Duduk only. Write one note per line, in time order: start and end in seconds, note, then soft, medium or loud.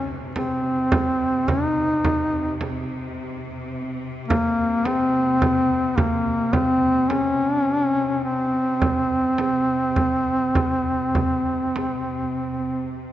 0.35 1.50 C4 medium
1.49 2.61 D#4 medium
4.28 4.87 A#3 medium
4.85 5.97 C4 medium
5.96 6.54 A#3 medium
6.53 7.10 C4 loud
7.09 8.23 C#4 loud
8.24 13.01 C4 medium